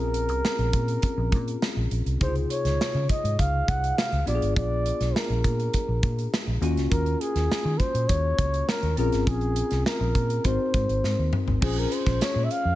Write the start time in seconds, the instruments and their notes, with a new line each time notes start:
Already playing: fingered electric bass A#1, tine electric piano C4 C#4 F4 G#4, flugelhorn A#4
0.14 closed hi-hat
0.29 fingered electric bass C2, closed hi-hat
0.45 snare
0.58 fingered electric bass A#1, closed hi-hat
0.73 fingered electric bass A#2, kick, closed hi-hat
0.88 closed hi-hat
1.02 kick, closed hi-hat
1.17 fingered electric bass A#1
1.32 fingered electric bass A#2, kick, closed hi-hat
1.48 closed hi-hat
1.62 snare
1.77 fingered electric bass A#1
1.91 fingered electric bass A#1, closed hi-hat
2.06 fingered electric bass C2, closed hi-hat
2.20 fingered electric bass C#2, tine electric piano C3 D#4 E4 G#4, flugelhorn C5, kick, closed hi-hat
2.28 tine electric piano F4
2.35 closed hi-hat
2.50 flugelhorn C#5, closed hi-hat
2.65 fingered electric bass C#2, snare, closed hi-hat
2.81 snare
2.94 fingered electric bass C#3
3.09 flugelhorn D#5, kick, closed hi-hat
3.24 fingered electric bass G#2, closed hi-hat
3.39 fingered electric bass C#2, flugelhorn F5, kick, closed hi-hat
3.68 fingered electric bass C2, flugelhorn F#5, kick, closed hi-hat
3.84 closed hi-hat
3.98 flugelhorn F5, snare
4.12 fingered electric bass C#2, closed hi-hat
4.26 fingered electric bass A#1, tine electric piano B3 D4 F4 G4, flugelhorn D5, closed hi-hat
4.35 tine electric piano G#4
4.42 fingered electric bass G#1, closed hi-hat
4.56 fingered electric bass A#1, flugelhorn D5, kick, closed hi-hat
4.86 closed hi-hat
5.00 fingered electric bass B1, snare, closed hi-hat
5.16 flugelhorn A#4, snare
5.30 fingered electric bass A#1, closed hi-hat
5.44 fingered electric bass A#2, kick, closed hi-hat
5.60 closed hi-hat
5.74 kick, closed hi-hat
5.88 fingered electric bass A#1
6.03 fingered electric bass A#2, kick, closed hi-hat
6.19 closed hi-hat
6.34 snare
6.47 fingered electric bass A#1
6.61 fingered electric bass D#2, tine electric piano A#3 C#4 F4 F#4, closed hi-hat
6.76 fingered electric bass C#2, snare, closed hi-hat
6.91 fingered electric bass D#2, flugelhorn A#4, kick, closed hi-hat
7.06 closed hi-hat
7.21 flugelhorn G#4, closed hi-hat
7.35 fingered electric bass D#2, snare, closed hi-hat
7.51 snare
7.65 fingered electric bass D#3
7.80 flugelhorn C5, kick, closed hi-hat
7.94 fingered electric bass A#2, closed hi-hat
8.08 fingered electric bass D#2, flugelhorn C#5, kick, closed hi-hat
8.38 fingered electric bass C#2, kick, closed hi-hat
8.54 closed hi-hat
8.69 flugelhorn A#4, snare
8.83 fingered electric bass D#2, closed hi-hat
8.97 fingered electric bass A#1, tine electric piano C4 C#4 F4 G#4, flugelhorn A#4, closed hi-hat
9.12 fingered electric bass G#1, snare, closed hi-hat
9.27 fingered electric bass A#1, flugelhorn G#4, kick, closed hi-hat
9.41 closed hi-hat
9.56 closed hi-hat
9.71 fingered electric bass C2, snare, closed hi-hat
9.86 flugelhorn A#4, snare
10.00 fingered electric bass A#1
10.15 fingered electric bass A#2, kick, closed hi-hat
10.30 closed hi-hat
10.44 fingered electric bass G#1, tine electric piano C4 D#4 F#4 A#4, flugelhorn C5, kick, closed hi-hat
10.74 fingered electric bass G#2, kick, closed hi-hat
10.89 fingered electric bass G#1, closed hi-hat
11.04 fingered electric bass G#2, snare
11.18 fingered electric bass D#2
11.33 mid tom
11.48 fingered electric bass G#1, floor tom
11.61 fingered electric bass A#1, tine electric piano C#4 F4 G#4 C5, flugelhorn G#4, kick, crash
11.79 flugelhorn A#4
11.92 flugelhorn C5, closed hi-hat
12.06 fingered electric bass A#1, kick, snare
12.21 flugelhorn C#5, muted fingered electric bass stroke, snare, closed hi-hat, tambourine
12.36 fingered electric bass A#2
12.44 flugelhorn E5
12.51 flugelhorn F5, closed hi-hat
12.65 fingered electric bass F2